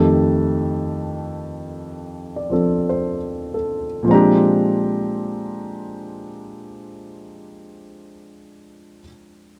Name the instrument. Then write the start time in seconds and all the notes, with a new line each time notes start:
grand piano
Already playing: F2 D#3 A3 G4 A4 A5
2.36 D5
2.50 F3 C4 A4
2.89 C5
3.54 A4
4.03 A#2 F3
4.08 G#3 C4 D4 A#5
4.14 G4